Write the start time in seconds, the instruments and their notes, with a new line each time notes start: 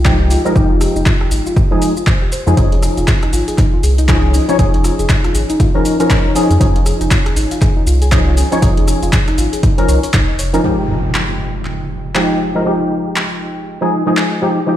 Already playing: analog synth bass C2
0.05 synth stab F3 G#3 D#4 G4, synth arpeggio sound G4, kick, clap, shaker
0.20 synth arpeggio sound D#4
0.30 synth arpeggio sound F4, open hi-hat, shaker
0.45 synth stab F3 G#3 D#4 A#4, synth arpeggio sound G4, shaker
0.55 analog synth bass F1, synth stab F3 D#4 G4, synth arpeggio sound D#4, kick, shaker
0.71 synth arpeggio sound F4
0.81 synth arpeggio sound G4, cross-stick, open hi-hat, shaker
0.96 analog synth bass F1, synth arpeggio sound D#4, shaker
1.06 synth arpeggio sound F4, kick, clap, shaker
1.21 synth arpeggio sound G4, cross-stick
1.31 analog synth bass G#1, synth arpeggio sound D#4, open hi-hat, shaker
1.46 synth arpeggio sound F4, shaker
1.56 synth arpeggio sound G4, kick, shaker
1.71 synth stab F3 G#3 D#4 G#4, synth arpeggio sound D#4
1.82 synth arpeggio sound D#4, open hi-hat, shaker
1.97 synth arpeggio sound F4, shaker
2.07 synth arpeggio sound C5, kick, clap, shaker
2.22 synth arpeggio sound G4
2.32 synth arpeggio sound C5, open hi-hat, shaker
2.47 analog synth bass F2, synth stab F3 G#3 D#4 G#4, synth arpeggio sound D#5, shaker
2.56 analog synth bass F1, synth stab F3 C#4 D#4 G#4, synth arpeggio sound F4, kick, closed hi-hat, shaker
2.72 synth arpeggio sound G#4, closed hi-hat
2.83 synth arpeggio sound D#4, cross-stick, open hi-hat, shaker
2.97 analog synth bass F1, synth arpeggio sound F4, closed hi-hat, shaker
3.08 synth arpeggio sound G#4, kick, clap, closed hi-hat, shaker
3.23 synth arpeggio sound D#4, cross-stick, closed hi-hat
3.33 analog synth bass G#1, synth arpeggio sound F4, open hi-hat, shaker
3.48 synth arpeggio sound G#4, closed hi-hat, shaker
3.58 synth arpeggio sound D#4, kick, clap, closed hi-hat, shaker
3.73 synth arpeggio sound F4
3.83 analog synth bass C2, synth arpeggio sound G#4, open hi-hat, shaker
3.98 synth arpeggio sound D#4, closed hi-hat, shaker
4.08 synth stab F3 C#4 D#4 G#4, synth arpeggio sound F4, kick, clap, closed hi-hat, shaker
4.24 synth arpeggio sound G#4
4.34 synth arpeggio sound D#4, open hi-hat, shaker
4.48 synth stab F3 C#4 D#4 C#5, synth arpeggio sound F4, closed hi-hat, shaker
4.58 analog synth bass F1, synth stab F3 C#4 D#4 G#4, synth arpeggio sound G#4, kick, closed hi-hat, shaker
4.74 synth arpeggio sound D#4, closed hi-hat
4.84 synth arpeggio sound F4, cross-stick, open hi-hat, shaker
4.99 analog synth bass F1, synth arpeggio sound G#4, closed hi-hat, shaker
5.09 synth arpeggio sound D#4, kick, clap, closed hi-hat, shaker
5.24 synth arpeggio sound F4, cross-stick, closed hi-hat
5.35 analog synth bass G#1, synth arpeggio sound G#4, open hi-hat, shaker
5.50 synth arpeggio sound D#4, closed hi-hat, shaker
5.60 synth arpeggio sound F4, kick, closed hi-hat, shaker
5.74 synth stab F3 C#4 D#4 A#4, synth arpeggio sound G#4
5.85 synth arpeggio sound D#4, open hi-hat, shaker
6.00 synth stab F3 C#4 D#4 A#4, synth arpeggio sound F4, closed hi-hat, shaker
6.10 synth arpeggio sound G#4, kick, clap, closed hi-hat, shaker
6.25 synth arpeggio sound D#4
6.35 synth stab F3 C#4 D#4 G#4, synth arpeggio sound F4, open hi-hat, shaker
6.50 analog synth bass F2, synth arpeggio sound G#4, closed hi-hat, shaker
6.60 analog synth bass F1, synth stab F3 C#4 D#4 G#4, synth arpeggio sound D#4, kick, closed hi-hat, shaker
6.76 synth arpeggio sound F4, closed hi-hat
6.86 synth arpeggio sound G#4, cross-stick, open hi-hat, shaker
7.01 analog synth bass F1, synth arpeggio sound D#4, closed hi-hat, shaker
7.11 synth arpeggio sound F4, kick, clap, closed hi-hat, shaker
7.26 synth arpeggio sound G#4, cross-stick, closed hi-hat
7.36 analog synth bass G#1, synth arpeggio sound D#4, open hi-hat, shaker
7.51 synth arpeggio sound F4, closed hi-hat, shaker
7.62 synth arpeggio sound G#4, kick, clap, closed hi-hat, shaker
7.76 synth arpeggio sound D#4
7.87 analog synth bass C2, synth arpeggio sound F4, open hi-hat, shaker
8.02 synth arpeggio sound G#4, closed hi-hat, shaker
8.11 synth stab F3 C#4 D#4 G#4, synth arpeggio sound D#4, kick, clap, closed hi-hat, shaker
8.27 synth arpeggio sound F4
8.37 synth arpeggio sound G#4, open hi-hat, shaker
8.52 synth stab F3 C#4 D#4 C#5, synth arpeggio sound D#4, closed hi-hat, shaker
8.61 analog synth bass F1, synth stab F3 C#4 D#4 G#4, synth arpeggio sound F4, kick, closed hi-hat, shaker
8.77 synth arpeggio sound G#4, closed hi-hat
8.88 synth arpeggio sound D#4, cross-stick, open hi-hat, shaker
9.03 analog synth bass F1, synth arpeggio sound F4, closed hi-hat, shaker
9.13 synth arpeggio sound G#4, kick, clap, closed hi-hat, shaker
9.28 synth arpeggio sound D#4, cross-stick, closed hi-hat
9.38 analog synth bass G#1, synth arpeggio sound F4, open hi-hat, shaker
9.53 synth arpeggio sound G#4, closed hi-hat, shaker
9.63 synth arpeggio sound D#4, kick, closed hi-hat, shaker
9.78 synth stab F3 C#4 D#4 A#4, synth arpeggio sound F4, closed hi-hat
9.88 analog synth bass C2, synth arpeggio sound C#5, open hi-hat, shaker
10.03 synth arpeggio sound C#5, closed hi-hat, shaker
10.14 analog synth bass C2, synth arpeggio sound D#4, kick, clap, closed hi-hat, shaker
10.29 analog synth bass F1, synth arpeggio sound D#5
10.39 synth arpeggio sound C#5, open hi-hat, shaker
10.53 synth stab F3 C#4 D#4 A#4, synth arpeggio sound D#4, closed hi-hat, shaker
10.63 synth stab F3 G#3 D#4 G4, impact
11.14 clap
11.65 clap
12.15 synth stab F3 G#3 D#4 G4, clap
12.55 synth stab F3 G#3 D#4 A#4
12.65 synth stab F3 G#3 D#4 G4
13.16 clap
13.81 synth stab F3 G#3 D#4 G#4
14.06 synth stab F3 G#3 D#4 G#4
14.17 clap
14.42 synth stab F3 G#3 D#4 G4
14.66 synth stab F3 G#3 D#4 G4, synth arpeggio sound G4